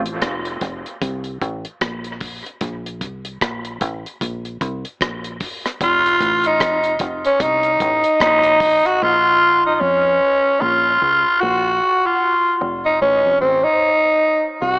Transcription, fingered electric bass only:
0.00 0.20 A1 loud
0.22 0.60 F1 medium
0.61 0.84 F1 medium
1.02 1.39 C2 loud
1.42 1.64 A1 loud
1.81 2.42 A#1 medium
2.62 3.02 A#1 loud
3.02 3.39 C2 loud
3.42 3.79 A#1 medium
3.81 4.04 A1 medium
4.22 4.59 A#1 loud
4.61 4.84 C2 loud
5.01 5.39 A#1 medium
5.81 6.19 F1 loud
6.21 6.59 A1 loud
6.61 6.98 F1 medium
7.00 7.23 F1 medium
7.40 7.78 C2 loud
7.81 8.03 A1 medium
8.21 8.81 A#1 loud
9.02 9.77 A#1 medium
9.81 10.18 F2 medium
10.62 10.99 A#1 loud
11.02 11.23 C#2 medium
11.43 11.79 A#1 medium
12.61 12.98 F1 loud
13.01 13.23 A1 medium
13.25 13.40 F1 medium
13.42 13.63 A1 medium
14.62 14.79 C2 medium

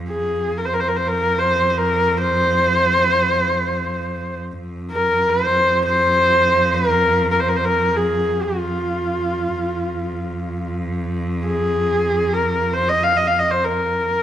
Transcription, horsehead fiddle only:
0.09 0.59 G#4 medium
0.58 0.66 A#4 medium
0.65 0.75 C5 medium
0.74 0.81 A#4 medium
0.80 0.90 C5 medium
0.88 0.98 A#4 medium
0.96 1.09 C5 medium
1.08 1.40 A#4 medium
1.38 1.70 C5 medium
1.70 1.79 C5 medium
1.78 2.19 A#4 medium
2.18 4.37 C5 medium
4.91 5.31 A#4 medium
5.29 5.84 C5 medium
5.85 6.75 C5 medium
6.73 7.30 A#4 medium
7.31 7.41 A#4 medium
7.40 7.50 C5 medium
7.49 7.58 A#4 medium
7.57 7.66 C5 medium
7.65 7.98 A#4 medium
7.96 8.44 G#4 medium
8.42 10.69 F4 medium
11.45 12.35 G#4 medium
12.34 12.75 A#4 medium
12.73 12.90 C5 medium
12.88 13.05 D#5 medium
13.04 13.18 F5 medium
13.17 13.29 D#5 medium
13.27 13.41 F5 medium
13.39 13.52 D#5 medium
13.51 13.66 C5 medium
13.65 14.23 A#4 medium

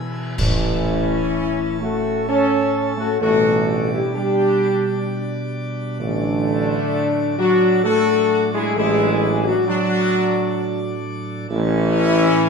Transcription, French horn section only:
0.38 1.77 E4 loud
1.80 2.28 A4 loud
2.29 2.94 C#5 loud
3.00 3.20 A4 loud
3.21 3.88 A4 loud
3.92 4.13 G4 loud
4.14 5.50 G4 loud
6.00 7.34 D4 loud
7.39 7.81 F#4 loud
7.84 8.49 A4 loud
8.55 8.76 G#4 loud
8.79 9.42 G#4 loud
9.46 9.66 F#4 loud
9.67 11.01 F#4 loud
11.51 12.49 E4 loud

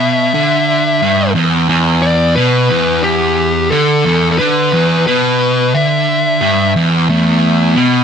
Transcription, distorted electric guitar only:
0.00 0.33 B2 loud
0.34 1.00 D3 loud
1.02 1.34 G2 loud
1.35 1.67 E2 loud
1.69 2.35 E2 loud
2.37 2.69 B2 loud
2.70 3.70 E2 loud
3.72 4.04 D3 loud
4.05 4.38 E2 medium
4.40 4.72 D3 loud
4.73 5.05 E2 loud
5.08 5.73 B2 loud
5.75 6.40 D3 loud
6.41 6.73 G2 loud
6.76 7.08 E2 medium
7.09 7.75 E2 loud
7.76 8.04 B2 loud

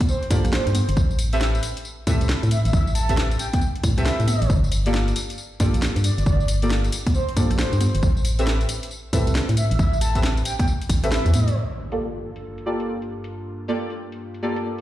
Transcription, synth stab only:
0.31 0.96 A#3 loud
0.31 0.96 F4 medium
0.31 0.96 G4 medium
0.31 0.96 A4 medium
0.31 0.96 D5 loud
1.33 1.39 C4 medium
1.33 1.39 G4 medium
1.33 1.39 A4 medium
1.33 1.39 B4 medium
1.33 1.39 E5 loud
2.07 3.06 C4 loud
2.07 3.06 G4 medium
2.07 3.06 A4 medium
2.07 3.06 B4 medium
2.07 3.06 E5 loud
3.09 3.16 C4 medium
3.09 3.16 G4 medium
3.09 3.16 A4 medium
3.09 3.16 B4 medium
3.09 3.16 E5 loud
3.98 4.49 C4 medium
3.98 4.49 G4 medium
3.98 4.49 A4 medium
3.98 4.49 B4 medium
3.98 4.49 E5 loud
4.86 4.92 A#3 medium
4.86 4.92 F4 medium
4.86 4.92 G4 medium
4.86 4.92 A4 medium
4.86 4.92 D5 loud
5.60 6.59 A#3 loud
5.60 6.59 F4 medium
5.60 6.59 G4 medium
5.60 6.59 A4 medium
5.60 6.59 D5 loud
6.62 6.69 A#3 medium
6.62 6.69 F4 medium
6.62 6.69 G4 medium
6.62 6.69 A4 medium
6.62 6.69 D5 loud
7.37 8.02 A#3 loud
7.37 8.02 F4 medium
7.37 8.02 G4 medium
7.37 8.02 A4 medium
7.37 8.02 D5 loud
8.39 8.45 C4 loud
8.39 8.45 G4 medium
8.39 8.45 A4 medium
8.39 8.45 B4 medium
8.39 8.45 E5 loud
9.13 10.12 C4 loud
9.13 10.12 G4 medium
9.13 10.12 A4 medium
9.13 10.12 B4 medium
9.13 10.12 E5 loud
10.15 10.22 C4 medium
10.15 10.22 G4 medium
10.15 10.22 A4 medium
10.15 10.22 B4 medium
10.15 10.22 E5 loud
11.04 11.55 C4 loud
11.04 11.55 G4 medium
11.04 11.55 A4 medium
11.04 11.55 B4 medium
11.04 11.55 E5 loud
11.92 11.98 A#3 medium
11.92 11.98 F4 medium
11.92 11.98 G4 medium
11.92 11.98 A4 medium
11.92 11.98 D5 loud
12.66 13.65 A#3 medium
12.66 13.65 F4 medium
12.66 13.65 G4 medium
12.66 13.65 A4 medium
12.66 13.65 D5 loud
13.68 13.75 A#3 medium
13.68 13.75 F4 medium
13.68 13.75 G4 medium
13.68 13.75 A4 medium
13.68 13.75 D5 loud
14.43 14.81 A#3 loud
14.43 14.81 F4 medium
14.43 14.81 G4 medium
14.43 14.81 A4 medium
14.43 14.81 D5 loud

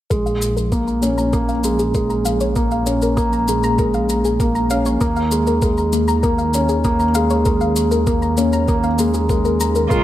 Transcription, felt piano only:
0.11 0.40 G#3 medium
0.72 1.01 A#3 medium
1.03 1.32 C#4 medium
1.33 1.51 A#3 medium
1.64 1.93 G#3 medium
1.95 2.24 G#3 medium
2.56 2.85 A#3 medium
2.86 3.16 C#4 medium
3.17 3.35 A#3 medium
3.48 3.77 G#3 medium
3.79 4.08 G#3 medium
4.40 4.69 A#3 medium
4.70 4.99 C#4 medium
5.01 5.18 A#3 medium
5.31 5.60 G#3 medium
5.62 5.91 G#3 medium
6.24 6.53 A#3 medium
6.55 6.83 C#4 medium
6.85 7.02 A#3 medium
7.15 7.44 G#3 medium
7.46 7.75 G#3 medium
8.07 8.36 A#3 medium
8.38 8.67 C#4 medium
8.68 8.86 A#3 medium
8.99 9.28 G#3 medium
9.29 9.58 G#3 medium
9.90 10.04 G#3 medium

